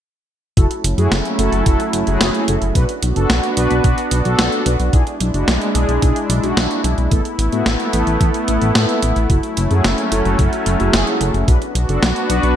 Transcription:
0.57 analog synth bass F#1, analog synth pad F#3 A3 C#4 E4, analog polysynth E4 F#4 A4, kick, closed hi-hat
0.71 closed hi-hat
0.84 analog synth bass F#1, closed hi-hat
0.98 analog synth bass F#2, analog polysynth E4 F#4 G#4, closed hi-hat
1.12 analog synth bass F#1, snare, closed hi-hat
1.25 closed hi-hat
1.39 analog synth bass F#1, analog polysynth E4 F#4 A4, closed hi-hat
1.52 analog synth bass F#1, closed hi-hat
1.66 analog synth bass F#1, analog polysynth E4 F#4 A4, kick, closed hi-hat
1.80 closed hi-hat
1.93 analog synth bass F#1, closed hi-hat
2.07 analog synth bass F#1, analog polysynth E4 F#4 G#4, closed hi-hat
2.21 analog synth bass F#1, snare, closed hi-hat
2.34 closed hi-hat
2.48 analog synth bass F#1, analog polysynth E4 F#4 A4, closed hi-hat
2.62 analog synth bass F#1, closed hi-hat
2.75 analog synth bass B1, analog synth pad B3 D4 F#4, analog polysynth D4 F#4 B4, kick, closed hi-hat
2.89 closed hi-hat
3.03 analog synth bass B1, closed hi-hat
3.16 analog synth bass F#1, analog polysynth D4 F#4 A4, closed hi-hat
3.30 analog synth bass B1, snare, closed hi-hat
3.43 closed hi-hat
3.57 analog synth bass B1, analog polysynth D4 F#4 B4, closed hi-hat
3.71 analog synth bass B1, closed hi-hat
3.84 analog synth bass B1, analog polysynth D4 F#4 B4, kick, closed hi-hat
3.98 closed hi-hat
4.11 analog synth bass B1, closed hi-hat
4.25 analog synth bass B1, analog polysynth D4 F#4 A4, closed hi-hat
4.39 analog synth bass B1, snare, closed hi-hat
4.52 closed hi-hat
4.66 analog synth bass B1, analog polysynth D4 F#4 B4, closed hi-hat
4.80 analog synth bass B1, closed hi-hat
4.93 analog synth bass B1, analog synth pad G#3 D4 E4, analog polysynth D4 E4 G#4, kick, closed hi-hat
5.07 closed hi-hat
5.21 analog synth bass B1, closed hi-hat
5.34 analog synth bass F#1, analog polysynth D4 E4 F#4, closed hi-hat
5.48 analog synth bass B1, snare, closed hi-hat
5.61 closed hi-hat
5.75 analog synth bass B1, analog polysynth D4 E4 G#4, closed hi-hat
5.89 analog synth bass B1, closed hi-hat
6.02 analog synth bass B1, analog polysynth D4 E4 G#4, kick, closed hi-hat
6.16 closed hi-hat
6.30 analog synth bass B1, closed hi-hat
6.43 analog synth bass B1, analog polysynth D4 E4 F#4, closed hi-hat
6.57 analog synth bass B1, snare, closed hi-hat
6.71 closed hi-hat
6.84 analog synth bass B1, analog polysynth D4 E4 G#4, closed hi-hat
6.98 analog synth bass B1, closed hi-hat
7.11 analog synth bass A1, analog synth pad A3 B3, analog polysynth B3 E4 A4, kick, closed hi-hat
7.25 closed hi-hat
7.39 analog synth bass A1, closed hi-hat
7.52 analog synth bass A2, analog polysynth B3 E4 F#4, closed hi-hat
7.66 analog synth bass A1, snare, closed hi-hat
7.80 closed hi-hat
7.93 analog synth bass A1, analog polysynth B3 E4 A4, closed hi-hat
8.07 analog synth bass A1, closed hi-hat
8.21 analog synth bass A1, analog polysynth B3 E4 A4, kick, closed hi-hat
8.34 closed hi-hat
8.48 analog synth bass A1, analog polysynth B3 E4 A4, closed hi-hat
8.62 analog synth bass A1, closed hi-hat
8.75 analog synth bass A2, snare, closed hi-hat
8.89 analog polysynth B3 E4 A4, closed hi-hat
9.02 analog synth bass A1, analog polysynth B3 E4 B4, closed hi-hat
9.16 analog synth bass A1, closed hi-hat
9.30 analog synth bass F#1, analog synth pad F#3 A3 C#4, analog polysynth E4 F#4 A4, kick, closed hi-hat
9.43 closed hi-hat
9.57 analog synth bass F#1, closed hi-hat
9.71 analog synth bass F#2, analog polysynth E4 F#4 G#4, closed hi-hat
9.84 analog synth bass F#1, snare, closed hi-hat
9.98 closed hi-hat
10.12 analog synth bass F#1, analog polysynth E4 F#4 A4, closed hi-hat
10.25 analog synth bass F#1, closed hi-hat
10.39 analog synth bass F#1, analog polysynth E4 F#4 A4, kick, closed hi-hat
10.53 closed hi-hat
10.66 analog synth bass F#1, closed hi-hat
10.80 analog synth bass F#1, analog polysynth E4 F#4 G#4, closed hi-hat
10.93 analog synth bass F#1, snare, closed hi-hat
11.07 closed hi-hat
11.21 analog synth bass F#1, analog polysynth E4 F#4 A4, closed hi-hat
11.34 analog synth bass F#1, closed hi-hat
11.48 analog synth bass B1, analog synth pad B3 D4 F#4, analog polysynth D4 F#4 B4, kick, closed hi-hat
11.62 closed hi-hat
11.75 analog synth bass B1, closed hi-hat
11.89 analog synth bass F#1, analog polysynth D4 F#4 A4, closed hi-hat
12.02 analog synth bass B1, snare, closed hi-hat
12.16 closed hi-hat
12.30 analog synth bass B1, analog polysynth D4 F#4 B4, closed hi-hat
12.43 analog synth bass B1, closed hi-hat

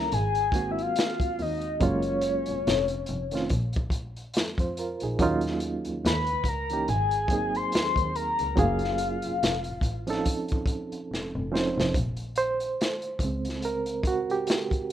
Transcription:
Already playing: reed electric piano D#3 G3 A#3 C#4 E4, soft synth lead A#5
0.12 double bass G#1, soft synth lead G#5, closed hi-hat
0.35 closed hi-hat
0.52 reed electric piano D#3 G#3 A#3 C4 F#4, kick, closed hi-hat
0.71 soft synth lead E5
0.79 soft synth lead F5, closed hi-hat
0.96 snare, closed hi-hat
1.20 kick, closed hi-hat
1.39 double bass D#2, soft synth lead D#5, open hi-hat
1.61 closed hi-hat
1.80 double bass F#1, reed electric piano F#3 G#3 A#3 C#4 F4, kick, closed hi-hat
1.84 soft synth lead C#5
2.02 closed hi-hat
2.21 closed hi-hat
2.46 double bass F1, closed hi-hat
2.67 double bass F1, snare, closed hi-hat
2.88 double bass F1, closed hi-hat
3.06 double bass F1, closed hi-hat
3.31 reed electric piano D#3 A3 C4 C#4 F4, closed hi-hat
3.35 snare
3.49 double bass A#1, kick, closed hi-hat
3.73 kick, closed hi-hat
3.90 kick, closed hi-hat
4.17 closed hi-hat
4.34 double bass F2, snare, closed hi-hat
4.58 double bass F2, reed electric piano F4 C5, kick, closed hi-hat
4.77 reed electric piano F4 A#4, closed hi-hat
5.00 double bass A#1, reed electric piano D#4 G#4, closed hi-hat
5.19 double bass D#2, reed electric piano F#3 A#3 C#4 D#4 F4, kick, closed hi-hat
5.41 closed hi-hat
5.46 snare
5.60 closed hi-hat
5.85 double bass D#2, closed hi-hat
6.05 double bass D#2, soft synth lead B5, snare, closed hi-hat
6.26 double bass C#2, closed hi-hat
6.44 double bass C#2, kick, closed hi-hat
6.48 soft synth lead A#5
6.70 reed electric piano E3 A#3 C#4 D#4 G4, closed hi-hat
6.88 double bass G#1, soft synth lead G#5, closed hi-hat
7.11 closed hi-hat
7.28 reed electric piano F#3 A#3 C4 D#4, kick, closed hi-hat
7.33 reed electric piano G#4
7.55 soft synth lead C6, closed hi-hat
7.72 double bass D#2, snare, closed hi-hat
7.96 double bass D#2, kick, closed hi-hat
8.15 soft synth lead A#5, closed hi-hat
8.39 double bass C#2, closed hi-hat
8.56 double bass F#1, reed electric piano F#3 A3 C#4 F4 G#4, soft synth lead F5, kick, closed hi-hat
8.63 reed electric piano A#3
8.79 closed hi-hat
8.84 snare
8.98 closed hi-hat
9.22 double bass F1, closed hi-hat
9.43 double bass F1, snare, closed hi-hat
9.64 double bass A1, closed hi-hat
9.81 double bass A1, kick, closed hi-hat
10.07 reed electric piano F3 C4 C#4 D#4 A4, closed hi-hat
10.11 snare
10.25 kick, closed hi-hat
10.48 kick, closed hi-hat
10.66 kick, closed hi-hat
10.92 closed hi-hat
11.11 double bass F1, snare
11.36 double bass F1
11.52 reed electric piano F3 C4 C#4 D#4 C5, snare
11.78 double bass F1, snare
11.94 double bass A#1, kick, closed hi-hat
12.17 closed hi-hat
12.36 reed electric piano C5, closed hi-hat
12.60 closed hi-hat
12.81 snare, closed hi-hat
13.02 closed hi-hat
13.19 double bass C#2, reed electric piano C#3, kick, closed hi-hat
13.23 reed electric piano G#3 C4
13.45 closed hi-hat
13.49 snare
13.62 reed electric piano A#4, closed hi-hat
13.86 closed hi-hat
14.03 kick, closed hi-hat
14.07 reed electric piano F#4
14.30 reed electric piano G4, closed hi-hat
14.47 snare, closed hi-hat
14.71 kick, closed hi-hat

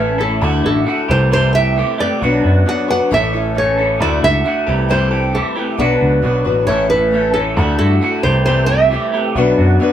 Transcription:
Already playing: picked electric bass A1, clean electric guitar A3 C#4 E4, tonewheel organ A3 C#4 E4 A4, nylon-string guitar B4
0.00 clean electric guitar A4
0.18 clean electric guitar A2 A3 C#4 E4 A4, nylon-string guitar A4
0.41 picked electric bass D2, clean electric guitar D3 A3 E4 F#4, tonewheel organ D4 E4 F#4 A4, steel-string acoustic guitar A4
0.64 picked electric bass A1, clean electric guitar A3 E4 F#4, nylon-string guitar A4
0.85 clean electric guitar D3 A3 E4 F#4
0.90 steel-string acoustic guitar A4
1.08 picked electric bass C2, clean electric guitar C3 E3 A3 E4 G4, steel-string acoustic guitar G3 C4 A4, tonewheel organ C4 E4 G4 A4, nylon-string guitar C5
1.31 clean electric guitar C3 E3 A3 E4 G4, steel-string acoustic guitar G3 C4 A4, nylon-string guitar C5
1.54 steel-string acoustic guitar G3 C4 A4, clean electric guitar A3 E4 G4, nylon-string guitar E5
1.76 clean electric guitar E3 A3 E4 G4, steel-string acoustic guitar G3 C4 A4
1.98 clean electric guitar C3 E3 A3 E4 G4, steel-string acoustic guitar G3 C4 A4, nylon-string guitar D5
2.20 picked electric bass B1, clean electric guitar B2 F#3 B3 D4 F#4, tonewheel organ B3 D4 F#4 B4, steel-string acoustic guitar B4
2.44 picked electric bass F#2, clean electric guitar B3 D4 F#4
2.66 clean electric guitar B2 F#3 B3 D4 F#4, nylon-string guitar F#5
2.70 steel-string acoustic guitar B4
2.88 clean electric guitar B3 D4 F#4, steel-string acoustic guitar B4, nylon-string guitar F#5
3.11 picked electric bass A1, clean electric guitar A2 E3 A3 C#4 A4, tonewheel organ A3 C#4 E4 A4, steel-string acoustic guitar E4, nylon-string guitar E5
3.34 clean electric guitar A3 C#4 A4, steel-string acoustic guitar E4
3.56 clean electric guitar E3 A3 C#4 A4, steel-string acoustic guitar E4, nylon-string guitar C#5
3.78 clean electric guitar A2 E3 A3 C#4 A4, steel-string acoustic guitar E4
3.99 picked electric bass D2, clean electric guitar D3 A3 E4 F#4, tonewheel organ D4 E4 F#4 A4, steel-string acoustic guitar A4, nylon-string guitar D5
4.22 picked electric bass C#2, clean electric guitar A3 E4 F#4, nylon-string guitar E5
4.44 clean electric guitar D3 A3 E4 F#4
4.48 steel-string acoustic guitar A4
4.66 picked electric bass C2, clean electric guitar C3 E3 A3 E4 G4, steel-string acoustic guitar G3 C4 A4, tonewheel organ C4 E4 G4 A4
4.89 clean electric guitar C3 E3 A3 E4 G4, steel-string acoustic guitar G3 C4 A4, nylon-string guitar C5
5.11 steel-string acoustic guitar G3 C4 A4, clean electric guitar A3 E4 G4
5.33 clean electric guitar E3 A3 E4 G4, steel-string acoustic guitar G3 C4 A4, nylon-string guitar A4
5.55 clean electric guitar C3 E3 A3 E4 G4, steel-string acoustic guitar G3 C4 A4
5.78 picked electric bass B1, clean electric guitar B2 F#3 B3 D4 F#4, tonewheel organ B3 D4 F#4 B4, nylon-string guitar B4, steel-string acoustic guitar B4
6.01 picked electric bass C#2, clean electric guitar B3 D4 F#4
6.23 picked electric bass B1, clean electric guitar B2 F#3 B3 D4 F#4, steel-string acoustic guitar B4
6.45 picked electric bass A1, clean electric guitar B3 D4 F#4, steel-string acoustic guitar B4
6.67 picked electric bass A1, clean electric guitar A2 E3 A3 C#4 A4, tonewheel organ A3 C#4 E4 A4, steel-string acoustic guitar E4, nylon-string guitar C#5
6.90 clean electric guitar A3 C#4 A4, steel-string acoustic guitar E4, nylon-string guitar B4
7.12 clean electric guitar E3 A3 C#4 A4, steel-string acoustic guitar E4
7.33 clean electric guitar A2 E3 A3 C#4 A4, steel-string acoustic guitar E4, nylon-string guitar A4
7.56 picked electric bass D2, clean electric guitar D3 A3 E4 F#4, tonewheel organ D4 E4 F#4 A4, steel-string acoustic guitar A4
7.79 picked electric bass G2, clean electric guitar A3 E4 F#4, nylon-string guitar A4
8.01 clean electric guitar D3 A3 E4 F#4, steel-string acoustic guitar A4
8.23 picked electric bass C2, clean electric guitar C3 E3 A3 E4 G4, tonewheel organ C4 E4 G4 A4, steel-string acoustic guitar C4 A4, nylon-string guitar C5
8.28 steel-string acoustic guitar G3
8.45 clean electric guitar C3 E3 A3 E4 G4, steel-string acoustic guitar G3 C4 A4, nylon-string guitar C5
8.66 clean electric guitar E4 G4, steel-string acoustic guitar A4, nylon-string guitar E5
8.71 steel-string acoustic guitar G3 C4, clean electric guitar A3
8.90 clean electric guitar E3 A3 E4 G4, steel-string acoustic guitar G3 C4
8.94 steel-string acoustic guitar A4
9.12 clean electric guitar C3 E3 A3 E4 G4, steel-string acoustic guitar C4 A4
9.17 steel-string acoustic guitar G3
9.34 picked electric bass B1, clean electric guitar B2 F#3 B3 D4 F#4, tonewheel organ B3 D4 F#4 B4
9.38 steel-string acoustic guitar B4
9.58 picked electric bass F#2, clean electric guitar B3 D4 F#4
9.80 clean electric guitar B2 F#3 B3 D4 F#4, steel-string acoustic guitar B4

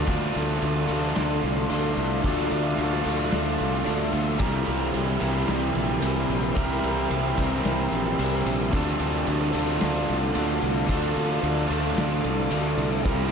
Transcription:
0.06 fingered electric bass D2, overdriven electric guitar D3 A3 D4 F4 A4, string machine A4 D5 F5, kick, ride
0.10 string machine C6
0.21 snare, tambourine
0.34 fingered electric bass D2, ride, tambourine
0.48 tambourine
0.61 fingered electric bass D2, ride, tambourine
0.75 tambourine
0.87 fingered electric bass D2, overdriven electric guitar D3 D4 F4 A4, ride, tambourine
1.03 tambourine
1.16 fingered electric bass D2, snare, ride, tambourine
1.43 fingered electric bass C2, ride, tambourine
1.69 fingered electric bass D2, overdriven electric guitar D3 D4 F4 A4, ride, tambourine
1.97 fingered electric bass C2, ride, tambourine
2.22 fingered electric bass D2, overdriven electric guitar D3 A3 D4 F4 A4, kick, ride
2.37 tambourine
2.51 fingered electric bass D2, ride, tambourine
2.64 tambourine
2.78 fingered electric bass D2, ride, tambourine
2.91 tambourine
3.04 fingered electric bass D2, overdriven electric guitar D3 D4 F4 A4, ride, tambourine
3.20 tambourine
3.32 fingered electric bass D2, snare, ride, tambourine
3.59 fingered electric bass C2, ride, tambourine
3.84 fingered electric bass D2, overdriven electric guitar D3 D4 F4 A4, ride, tambourine
4.12 fingered electric bass D2, ride, tambourine
4.38 fingered electric bass C2, overdriven electric guitar C3 E3 G3 C4 E4 A#4, string machine E5 G5, kick, ride
4.42 string machine A#4
4.54 tambourine
4.66 fingered electric bass C2, ride, tambourine
4.81 tambourine
4.94 fingered electric bass C2, ride, tambourine
5.08 tambourine
5.20 fingered electric bass C2, overdriven electric guitar C3 E3 G3 C4 E4 A#4, ride, tambourine
5.34 tambourine
5.48 fingered electric bass C2, snare, ride, tambourine
5.75 fingered electric bass A#1, ride, tambourine
6.01 fingered electric bass C2, overdriven electric guitar C3 E3 G3 C4 E4 A#4, ride, tambourine
6.30 fingered electric bass A#1, ride, tambourine
6.55 fingered electric bass C2, overdriven electric guitar C3 E3 G3 C4 E4 A#4, kick, ride, tambourine
6.72 tambourine
6.84 fingered electric bass C2, ride, tambourine
6.99 tambourine
7.11 fingered electric bass C2, ride, tambourine
7.27 tambourine
7.37 fingered electric bass C2, overdriven electric guitar C3 E3 G3 C4 E4 A#4, kick, ride, tambourine
7.53 tambourine
7.65 fingered electric bass C2, snare, ride, tambourine
7.92 fingered electric bass A#1, ride, tambourine
8.06 tambourine
8.19 fingered electric bass C2, overdriven electric guitar C3 E3 G3 C4 E4 A#4, ride, tambourine
8.34 tambourine
8.46 fingered electric bass A#1, ride, tambourine
8.72 fingered electric bass D2, overdriven electric guitar D3 A3 D4 F4 A4, string machine A4 D5 F5, kick, ride
8.87 tambourine
9.00 fingered electric bass D2, ride, tambourine
9.15 tambourine
9.27 fingered electric bass D2, ride, tambourine
9.41 tambourine
9.52 fingered electric bass D2, overdriven electric guitar D3 D4 F4 A4, ride, tambourine
9.69 tambourine
9.81 fingered electric bass D2, snare, ride, tambourine
10.08 fingered electric bass C2, ride, tambourine
10.34 fingered electric bass D2, overdriven electric guitar D3 D4 F4 A4, ride, tambourine
10.62 fingered electric bass C2, ride, tambourine
10.87 fingered electric bass D2, overdriven electric guitar D3 A3 D4 F4 A4, string machine D6, kick, ride
11.04 tambourine
11.17 fingered electric bass D2, ride, tambourine
11.33 tambourine
11.43 fingered electric bass D2, ride, tambourine
11.58 tambourine
11.68 fingered electric bass D2, overdriven electric guitar D3 D4 F4 A4, ride, tambourine
11.83 tambourine
11.97 fingered electric bass D2, snare, ride, tambourine
12.24 fingered electric bass C2, ride, tambourine
12.50 fingered electric bass D2, overdriven electric guitar D3 D4 F4 A4, ride, tambourine
12.78 fingered electric bass C2, ride, tambourine
13.03 fingered electric bass C2, overdriven electric guitar C3 E3 G3 C4 E4 A#4, string machine A#4 E5 G5 C6, kick, ride
13.20 snare, tambourine

